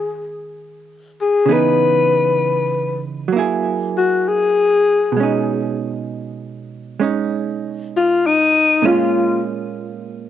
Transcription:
0.00 1.47 D#3 soft
0.00 1.47 G#3 soft
0.00 1.48 C#4 soft
0.00 0.27 G#4 medium
1.21 1.54 G#4 medium
1.46 3.30 C#3 soft
1.46 3.28 E3 soft
1.46 3.32 B3 soft
1.51 3.32 D#4 medium
1.51 3.02 B4 medium
3.28 5.13 F#3 soft
3.32 5.15 A#3 soft
3.32 5.17 E4 soft
3.39 5.18 G#4 soft
3.97 4.30 F#4 medium
4.28 5.77 G#4 medium
5.12 8.81 B2 soft
5.16 6.98 G#3 soft
5.16 7.00 C#4 soft
5.23 7.01 D#4 soft
6.99 8.83 G#3 soft
6.99 8.83 C#4 soft
6.99 8.84 D#4 soft
7.97 8.28 F4 medium
8.27 8.88 D#4 medium
8.82 10.30 A#2 soft
8.82 10.30 G#3 soft
8.82 10.30 C#4 medium
8.87 9.45 F4 medium
8.87 10.30 F4 medium

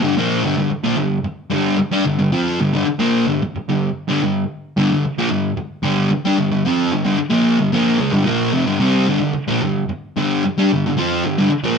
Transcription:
0.02 0.15 G2 medium
0.02 0.15 D3 loud
0.17 0.42 A#2 medium
0.17 0.43 F3 medium
0.17 0.43 A#3 loud
0.43 0.55 G2 medium
0.43 0.56 D3 loud
0.57 0.69 G2 medium
0.57 0.70 D3 medium
0.70 muted distorted electric guitar stroke medium
0.84 0.96 A#2 medium
0.84 0.97 F3 loud
0.97 1.18 G2 medium
0.97 1.19 D3 medium
1.24 muted distorted electric guitar stroke medium
1.50 1.76 G2 medium
1.50 1.77 D3 medium
1.50 1.78 G3 loud
1.78 muted distorted electric guitar stroke medium
1.92 2.04 G3 medium
1.92 2.05 D4 loud
2.05 2.18 G2 medium
2.05 2.18 D3 medium
2.19 2.32 G2 medium
2.19 2.32 D3 medium
2.32 2.58 F3 medium
2.32 2.58 C4 loud
2.32 2.59 F4 loud
2.61 2.73 G2 medium
2.61 2.73 D3 medium
2.74 2.85 G2 loud
2.74 2.86 D3 medium
2.86 muted distorted electric guitar stroke medium
2.99 3.25 A#2 medium
2.99 3.26 F3 loud
2.99 3.26 A#3 loud
3.27 3.40 G2 medium
3.27 3.40 D3 medium
3.42 muted distorted electric guitar stroke medium
3.56 muted distorted electric guitar stroke medium
3.69 3.90 G2 medium
3.69 3.90 D3 medium
4.08 4.21 G2 medium
4.08 4.21 D3 medium
4.24 4.44 G2 medium
4.24 4.44 D3 medium
4.77 4.88 G2 loud
4.77 4.89 D3 loud
4.92 5.04 G2 medium
4.92 5.04 D3 medium
5.05 muted distorted electric guitar stroke medium
5.18 5.30 A#2 medium
5.18 5.30 F3 loud
5.31 5.52 G2 medium
5.31 5.52 D3 medium
5.57 muted distorted electric guitar stroke medium
5.83 6.09 G2 medium
5.83 6.10 D3 loud
5.83 6.10 G3 loud
6.11 muted distorted electric guitar stroke medium
6.25 6.37 G3 medium
6.25 6.38 D4 medium
6.37 6.50 G2 medium
6.37 6.50 D3 medium
6.51 6.65 G2 medium
6.51 6.64 D3 medium
6.65 6.91 F3 medium
6.65 6.91 C4 loud
6.65 6.92 F4 medium
6.91 7.03 G2 medium
6.91 7.04 D3 medium
7.04 7.17 G2 medium
7.04 7.18 D3 loud
7.18 muted distorted electric guitar stroke medium
7.30 7.57 A#2 medium
7.30 7.58 F3 medium
7.30 7.58 A#3 loud
7.59 7.72 G2 medium
7.59 7.72 D3 medium
7.72 7.98 A#2 loud
7.72 7.99 F3 loud
7.72 7.99 A#3 medium
7.98 8.12 C#3 medium
7.98 8.12 G#3 loud
8.11 8.24 G2 medium
8.11 8.25 D3 medium
8.25 8.52 A#2 medium
8.25 8.52 F3 medium
8.25 8.53 A#3 loud
8.53 8.65 F2 medium
8.53 8.66 C3 medium
8.65 8.79 G2 medium
8.65 8.79 D3 medium
8.79 9.06 C3 medium
8.79 9.07 G3 medium
8.79 9.07 C4 medium
9.07 9.18 G2 medium
9.07 9.19 D3 loud
9.19 9.32 G2 medium
9.19 9.34 D3 medium
9.33 muted distorted electric guitar stroke medium
9.48 9.60 A#2 medium
9.48 9.61 F3 loud
9.62 9.83 G2 medium
9.62 9.83 D3 medium
9.89 muted distorted electric guitar stroke medium
10.16 10.42 G2 medium
10.16 10.43 D3 loud
10.16 10.43 G3 loud
10.45 muted distorted electric guitar stroke medium
10.58 10.70 G3 medium
10.58 10.70 D4 medium
10.73 10.85 G2 medium
10.73 10.85 D3 medium
10.86 10.98 G2 medium
10.86 10.96 D3 medium
10.96 11.23 F3 medium
10.96 11.23 C4 loud
10.96 11.24 F4 medium
11.25 11.37 G2 medium
11.25 11.38 D3 medium
11.38 11.49 G2 loud
11.38 11.51 D3 loud
11.50 muted distorted electric guitar stroke medium
11.64 11.78 A#2 medium
11.64 11.78 F3 medium
11.64 11.78 A#3 loud

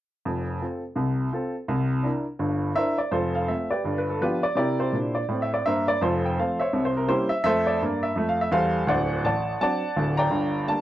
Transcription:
0.25 0.56 F1 medium
0.25 0.56 F2 medium
0.61 0.81 C4 soft
0.61 0.81 F4 soft
0.61 0.81 A4 soft
0.96 1.27 C2 medium
0.96 1.27 C3 medium
1.33 1.53 C4 soft
1.33 1.53 F4 soft
1.33 1.53 A4 soft
1.68 1.99 C2 medium
1.68 1.99 C3 medium
2.03 2.24 D4 soft
2.03 2.24 E4 soft
2.03 2.25 A#4 soft
2.39 2.71 G1 medium
2.39 2.71 G2 medium
2.75 2.95 D4 medium
2.75 2.96 E4 soft
2.75 2.97 A#4 medium
2.75 2.97 C5 medium
2.75 2.98 E5 medium
2.98 3.13 D5 medium
3.11 3.43 F1 soft
3.11 3.43 F2 medium
3.11 3.33 F4 medium
3.11 3.34 A4 medium
3.11 3.34 C5 medium
3.35 3.49 F5 medium
3.48 3.68 A3 soft
3.48 3.68 C4 soft
3.48 3.69 F4 soft
3.48 3.71 E5 medium
3.71 3.95 G4 soft
3.71 3.95 B4 soft
3.71 3.97 D5 medium
3.84 4.15 G1 medium
3.84 4.15 G2 medium
3.98 4.10 B4 medium
4.10 4.21 A4 medium
4.21 4.41 F3 soft
4.21 4.41 B3 soft
4.21 4.41 D4 soft
4.21 4.42 F4 medium
4.21 4.42 G4 medium
4.21 4.43 B4 medium
4.43 4.55 D5 medium
4.55 4.85 C3 medium
4.55 4.79 E4 medium
4.55 4.77 G4 medium
4.55 4.77 A#4 medium
4.55 4.79 D5 medium
4.80 5.13 E4 soft
4.80 5.13 G4 soft
4.80 5.15 C5 medium
4.93 5.21 A#2 soft
4.93 5.23 D4 soft
5.15 5.41 D5 medium
5.28 5.57 A2 medium
5.28 5.59 C4 soft
5.42 5.54 E5 medium
5.54 5.65 D5 medium
5.65 5.94 G2 medium
5.65 5.95 A#3 medium
5.65 5.86 A#4 medium
5.65 5.86 C5 medium
5.65 5.87 E5 medium
5.88 6.02 D5 medium
6.01 6.32 F1 medium
6.01 6.32 F2 medium
6.01 6.23 F4 medium
6.01 6.23 A4 medium
6.01 6.23 C5 medium
6.25 6.38 G5 medium
6.38 6.57 F3 soft
6.38 6.58 A3 soft
6.38 6.58 C4 soft
6.38 6.59 A4 soft
6.38 6.59 C5 soft
6.38 6.60 F5 medium
6.60 6.84 C5 soft
6.60 6.84 C#5 medium
6.60 6.85 E5 medium
6.73 7.04 C2 medium
6.73 7.04 C3 medium
6.85 6.97 C5 medium
6.97 7.09 A#4 medium
7.08 7.28 G3 soft
7.08 7.28 A#3 soft
7.08 7.29 C#4 soft
7.08 7.29 E4 medium
7.08 7.29 G4 medium
7.08 7.30 C5 medium
7.29 7.42 E5 medium
7.44 7.73 F2 medium
7.44 7.74 A3 medium
7.44 7.66 A4 medium
7.44 7.65 C5 medium
7.44 7.66 E5 loud
7.67 8.02 D5 medium
7.81 8.10 G2 medium
7.81 8.10 A#3 medium
8.03 8.29 E5 medium
8.16 8.45 F2 medium
8.16 8.46 A3 medium
8.29 8.41 F5 medium
8.41 8.53 E5 medium
8.51 8.81 E2 medium
8.51 8.82 G3 medium
8.51 8.86 A4 medium
8.51 8.86 C5 medium
8.51 8.88 F5 medium
8.87 9.17 D1 medium
8.87 9.16 D2 medium
8.87 9.22 C5 medium
8.87 9.22 D5 medium
8.87 9.24 F#5 medium
9.24 9.53 A1 medium
9.24 9.59 D5 medium
9.24 9.59 F#5 medium
9.24 9.60 A5 medium
9.61 9.80 F#3 soft
9.61 9.80 C4 soft
9.61 9.80 D4 soft
9.61 10.15 D5 medium
9.61 10.15 F#5 medium
9.61 10.18 A5 medium
9.96 10.25 D1 medium
9.96 10.25 D2 medium
10.17 10.65 D5 medium
10.17 10.65 G5 medium
10.17 10.68 A#5 loud
10.30 10.62 G1 medium
10.30 10.62 G2 medium
10.67 10.81 G3 soft
10.67 10.81 A#3 soft
10.67 10.81 D4 soft
10.67 10.81 A5 medium

